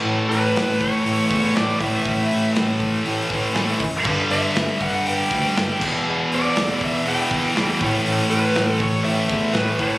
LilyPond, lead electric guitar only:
\new Staff \with { instrumentName = "Lead electric guitar" } { \time 4/4 \key a \mixolydian \tempo 4 = 120 r8 b'4 cis''4. d''8 e''8~ | e''4 r2. | r8 e''4 fis''8 g''4. r8 | r8 d''4 e''8 g''4. r8 |
r8 b'4 cis''8 e''4 b'8 cis''8 | }